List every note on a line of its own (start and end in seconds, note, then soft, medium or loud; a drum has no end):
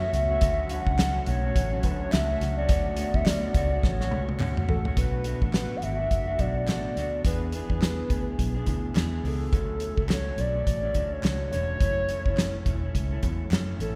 0.00 0.38 A3 medium
0.00 0.40 B3 medium
0.00 0.31 C#4 medium
0.00 4.93 F#4 loud
0.00 0.29 F#4 medium
0.00 0.11 E5 loud
0.04 0.31 A3 soft
0.13 0.36 C#2 medium
0.13 0.72 E5 loud
0.13 snare soft
0.13 closed hi-hat medium
0.31 0.42 A3 medium
0.31 0.42 C#4 medium
0.31 0.42 F#4 medium
0.41 0.78 D2 loud
0.41 0.70 D3 medium
0.41 4.94 F#3 medium
0.41 4.93 A3 medium
0.41 0.71 A3 medium
0.41 2.68 C#4 medium
0.41 0.71 C#4 medium
0.41 4.94 D4 medium
0.41 0.71 F#4 medium
0.41 kick loud
0.41 closed hi-hat medium
0.69 0.98 D3 medium
0.69 0.99 A3 medium
0.69 1.00 C#4 medium
0.69 1.27 F#5 loud
0.69 closed hi-hat medium
0.74 1.00 F#4 medium
0.86 1.19 C#2 medium
0.86 kick medium
0.99 1.26 D3 medium
0.99 1.28 A3 medium
0.99 1.28 C#4 medium
0.99 1.28 F#4 medium
0.99 snare loud
0.99 clap medium
0.99 closed hi-hat loud
1.26 1.50 B1 loud
1.26 1.44 D3 medium
1.26 1.45 A3 medium
1.26 1.45 C#4 medium
1.26 1.44 F#4 medium
1.26 1.86 C#5 loud
1.26 closed hi-hat medium
1.45 1.74 A3 soft
1.45 1.73 C#4 medium
1.45 1.72 F#4 medium
1.56 1.78 A1 loud
1.56 kick medium
1.56 closed hi-hat medium
1.73 1.84 A3 soft
1.73 1.85 C#4 medium
1.73 1.84 F#4 medium
1.83 2.07 D2 medium
1.83 2.12 D3 medium
1.83 2.13 A3 medium
1.83 2.13 C#4 medium
1.83 2.14 F#4 medium
1.83 2.00 B4 medium
1.83 kick medium
1.83 closed hi-hat medium
2.01 2.11 C#5 medium
2.12 2.35 C#2 medium
2.12 2.30 D3 medium
2.12 2.30 A3 medium
2.12 2.30 C#4 medium
2.12 2.29 F#4 medium
2.12 2.54 E5 loud
2.12 snare loud
2.12 clap medium
2.12 closed hi-hat medium
2.30 2.59 A3 soft
2.30 2.59 C#4 medium
2.30 2.57 F#4 medium
2.41 2.63 C#2 medium
2.41 snare soft
2.41 closed hi-hat medium
2.57 2.70 C#4 medium
2.57 2.70 F#4 medium
2.57 3.16 D5 loud
2.61 2.70 A3 soft
2.69 3.05 D2 loud
2.69 2.97 D3 medium
2.69 2.98 A3 medium
2.69 4.95 B3 medium
2.69 2.99 C#4 medium
2.69 2.99 F#4 medium
2.69 kick loud
2.69 closed hi-hat medium
2.97 3.26 D3 medium
2.97 3.26 A3 medium
2.97 3.27 C#4 medium
2.97 closed hi-hat medium
3.01 3.28 F#4 medium
3.14 3.46 D2 loud
3.14 3.27 E5 medium
3.14 kick medium
3.26 3.54 D3 medium
3.26 3.55 A3 medium
3.26 3.56 C#4 medium
3.26 3.56 F#4 medium
3.26 3.85 D5 loud
3.26 snare loud
3.26 clap medium
3.26 closed hi-hat loud
3.54 3.77 C#2 medium
3.54 3.72 D3 medium
3.54 3.72 A3 medium
3.54 3.73 C#4 medium
3.54 3.71 F#4 medium
3.54 kick loud
3.54 closed hi-hat medium
3.72 4.02 A3 soft
3.72 4.01 C#4 medium
3.72 4.00 F#4 medium
3.83 4.11 A1 loud
3.83 4.69 C#5 medium
3.83 kick medium
3.83 snare medium
4.01 4.12 A3 soft
4.01 4.12 C#4 soft
4.01 4.12 F#4 medium
4.01 snare medium
4.11 4.34 C#2 medium
4.11 4.39 D3 medium
4.11 4.40 A3 medium
4.11 4.41 C#4 medium
4.11 4.41 F#4 medium
4.11 high tom medium
4.29 high tom medium
4.39 4.62 D2 loud
4.39 4.57 D3 medium
4.39 4.58 A3 medium
4.39 4.58 C#4 medium
4.39 4.56 F#4 medium
4.39 clap medium
4.39 mid tom medium
4.57 4.87 A3 medium
4.57 4.86 C#4 medium
4.57 4.85 F#4 medium
4.57 mid tom medium
4.68 4.91 A1 loud
4.68 4.82 A4 medium
4.68 floor tom loud
4.85 4.96 A3 medium
4.85 4.97 C#4 medium
4.85 4.97 F#4 medium
4.85 floor tom medium
4.97 5.33 B1 medium
4.97 5.24 B2 medium
4.97 5.25 A3 medium
4.97 5.26 D4 medium
4.97 5.26 F#4 medium
4.97 5.50 B4 loud
4.97 kick loud
4.97 closed hi-hat medium
5.24 5.42 B2 medium
5.24 5.43 A3 medium
5.24 5.42 D4 medium
5.24 5.40 F#4 medium
5.24 closed hi-hat medium
5.41 5.74 A1 medium
5.41 5.53 A3 soft
5.41 5.54 D4 soft
5.41 5.53 F#4 soft
5.41 kick medium
5.53 5.81 B2 medium
5.53 5.82 A3 medium
5.53 5.83 D4 medium
5.53 5.83 F#4 medium
5.53 5.78 B4 loud
5.53 snare loud
5.53 clap medium
5.53 closed hi-hat medium
5.77 5.84 F#5 medium
5.82 6.05 G#1 medium
5.82 5.99 B2 medium
5.82 6.00 A3 soft
5.82 5.99 D4 medium
5.82 5.98 F#4 medium
5.82 6.41 E5 loud
5.82 closed hi-hat medium
6.00 6.29 A3 soft
6.00 6.28 D4 soft
6.00 6.26 F#4 soft
6.11 6.34 F#1 medium
6.11 kick medium
6.11 closed hi-hat medium
6.27 6.38 A3 soft
6.27 6.39 D4 soft
6.27 6.39 F#4 medium
6.38 6.68 B1 medium
6.38 6.67 B2 medium
6.38 6.67 A3 medium
6.38 6.68 D4 medium
6.38 6.68 F#4 medium
6.38 6.68 D5 loud
6.38 kick medium
6.38 closed hi-hat medium
6.68 6.91 A1 medium
6.68 6.95 B2 medium
6.68 6.96 A3 medium
6.68 6.97 D4 medium
6.68 6.97 F#4 medium
6.68 7.21 D5 loud
6.68 snare medium
6.68 clap medium
6.68 closed hi-hat medium
6.96 7.19 D2 medium
6.96 7.25 B2 medium
6.96 7.25 A3 medium
6.96 7.25 D4 medium
6.96 7.26 F#4 medium
6.96 snare soft
6.96 closed hi-hat medium
7.25 7.61 E2 loud
7.25 7.52 E3 medium
7.25 7.53 B3 medium
7.25 7.54 D4 medium
7.25 7.54 G#4 medium
7.25 7.52 B4 loud
7.25 kick loud
7.25 closed hi-hat medium
7.52 7.70 E3 medium
7.52 7.70 B3 medium
7.52 7.70 D4 medium
7.52 7.68 G#4 medium
7.52 8.64 B4 loud
7.52 closed hi-hat medium
7.69 8.02 E2 medium
7.69 7.81 B3 soft
7.69 7.81 D4 soft
7.69 7.81 G#4 soft
7.69 kick medium
7.81 8.08 E3 medium
7.81 8.09 B3 medium
7.81 8.10 D4 medium
7.81 8.11 G#4 medium
7.81 snare loud
7.81 clap medium
7.81 closed hi-hat medium
8.10 8.33 D2 medium
8.10 8.56 E3 medium
8.10 8.56 B3 medium
8.10 8.55 D4 medium
8.10 8.53 G#4 medium
8.10 kick medium
8.10 closed hi-hat medium
8.39 8.62 B1 medium
8.39 kick medium
8.39 closed hi-hat medium
8.55 8.66 B3 soft
8.55 8.67 D4 medium
8.55 8.67 G#4 medium
8.66 8.90 D2 medium
8.66 8.94 E3 medium
8.66 8.94 B3 medium
8.66 8.95 D4 medium
8.66 8.95 G#4 medium
8.66 kick medium
8.66 closed hi-hat medium
8.95 9.18 E2 medium
8.95 9.22 E3 medium
8.95 9.23 B3 medium
8.95 9.24 D4 medium
8.95 9.25 G#4 medium
8.95 snare loud
8.95 clap medium
8.95 closed hi-hat medium
9.24 9.47 C#2 medium
9.24 9.52 E3 medium
9.24 9.53 B3 medium
9.24 9.53 D4 medium
9.24 9.54 G#4 medium
9.24 10.07 A4 loud
9.24 open hi-hat soft
9.52 9.89 D2 medium
9.52 9.98 D3 medium
9.52 9.98 F#3 medium
9.52 9.97 A3 medium
9.52 9.96 C#4 medium
9.52 kick loud
9.52 closed hi-hat medium
9.80 closed hi-hat medium
9.97 10.30 C#2 medium
9.97 10.08 F#3 soft
9.97 10.09 A3 soft
9.97 10.09 C#4 soft
9.97 kick medium
10.09 10.37 D3 medium
10.09 10.38 F#3 medium
10.09 10.38 A3 medium
10.09 10.39 C#4 medium
10.09 10.41 C#5 loud
10.09 snare loud
10.09 clap medium
10.09 closed hi-hat medium
10.38 10.61 B1 medium
10.38 10.55 D3 medium
10.38 10.56 F#3 medium
10.38 10.55 A3 medium
10.38 10.53 C#4 medium
10.38 11.14 D5 loud
10.38 closed hi-hat medium
10.54 10.84 F#3 soft
10.54 10.83 A3 soft
10.54 10.82 C#4 soft
10.67 10.90 A1 medium
10.67 kick medium
10.67 closed hi-hat medium
10.83 10.95 F#3 soft
10.83 10.95 A3 soft
10.83 10.95 C#4 medium
10.94 11.18 D2 medium
10.94 11.22 D3 medium
10.94 11.23 F#3 medium
10.94 11.23 A3 medium
10.94 11.24 C#4 medium
10.94 kick medium
10.94 closed hi-hat medium
11.13 11.51 C#5 loud
11.23 11.46 C#2 medium
11.23 11.50 D3 medium
11.23 11.52 F#3 medium
11.23 11.52 A3 medium
11.23 11.53 C#4 medium
11.23 snare loud
11.23 clap medium
11.23 closed hi-hat medium
11.52 11.75 E1 medium
11.52 11.80 D3 medium
11.52 11.81 F#3 medium
11.52 11.81 A3 medium
11.52 11.81 C#4 medium
11.52 13.19 C#5 loud
11.52 snare soft
11.52 closed hi-hat medium
11.80 12.17 F#1 medium
11.80 12.07 F#2 medium
11.80 12.08 E3 medium
11.80 12.09 A3 medium
11.80 12.10 C#4 medium
11.80 kick loud
11.80 closed hi-hat medium
12.08 12.26 F#2 medium
12.08 12.26 E3 medium
12.08 12.27 A3 medium
12.08 12.25 C#4 medium
12.08 closed hi-hat medium
12.26 12.58 F#1 medium
12.26 12.37 E3 medium
12.26 12.37 A3 medium
12.26 12.38 C#4 medium
12.26 kick medium
12.37 12.64 F#2 medium
12.37 12.66 E3 medium
12.37 12.66 A3 medium
12.37 12.67 C#4 medium
12.37 snare loud
12.37 clap medium
12.37 closed hi-hat medium
12.66 12.89 E1 medium
12.66 12.83 F#2 medium
12.66 12.83 E3 medium
12.66 12.83 A3 medium
12.66 12.82 C#4 medium
12.66 kick medium
12.66 closed hi-hat medium
12.83 13.13 E3 soft
12.83 13.11 A3 soft
12.83 13.10 C#4 medium
12.95 13.17 C#2 medium
12.95 kick medium
12.95 closed hi-hat medium
13.11 13.22 E3 soft
13.11 13.23 A3 soft
13.11 13.23 C#4 medium
13.22 13.46 E2 medium
13.22 13.50 F#2 medium
13.22 13.50 E3 medium
13.22 13.51 A3 medium
13.22 13.52 C#4 medium
13.22 kick medium
13.22 closed hi-hat medium
13.51 13.74 F#2 medium
13.51 13.78 F#2 medium
13.51 13.79 E3 medium
13.51 13.80 A3 medium
13.51 13.80 C#4 loud
13.51 snare loud
13.51 clap medium
13.51 closed hi-hat medium
13.79 13.96 A1 medium
13.79 13.96 F#2 medium
13.79 13.96 E3 medium
13.79 13.96 A3 medium
13.79 13.96 C#4 medium
13.79 13.96 A4 medium
13.79 closed hi-hat medium